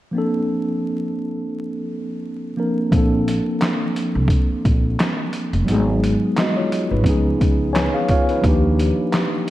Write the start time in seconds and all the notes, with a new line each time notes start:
0.11 F3 A#3 C4
0.17 D4 A4
2.56 F3 A#3 C4 D4 A#4
2.91 A#1 F3 A#3 C4, kick, closed hi-hat
2.96 D4 A4
3.28 closed hi-hat
3.61 snare, clap, closed hi-hat
3.96 closed hi-hat
4.15 C2
4.28 kick, closed hi-hat
4.50 muted upright bass stroke
4.65 A#1, kick, closed hi-hat
4.99 snare, clap, closed hi-hat
5.33 closed hi-hat
5.53 F1, closed hi-hat
5.65 G#1 F#3 G#3 B3, closed hi-hat
5.70 D#4 G#4
6.04 closed hi-hat
6.37 F#4 D#5, snare, clap, closed hi-hat
6.57 F4 C#5
6.72 closed hi-hat
6.91 G#1 D#4 B4
7.02 C#2 F3 B3 C#4, kick, closed hi-hat
7.08 D#4 G#4
7.41 C#2, kick, closed hi-hat
7.73 B4 C#5 G#5, snare, clap, closed hi-hat
7.94 G#4 F5
8.09 F4 C#5 F5, kick, closed hi-hat
8.29 D#4 B4, closed hi-hat
8.42 D#2 F3 A#3 D4, kick, closed hi-hat
8.46 D#4 G4
8.79 closed hi-hat
9.13 snare, clap, closed hi-hat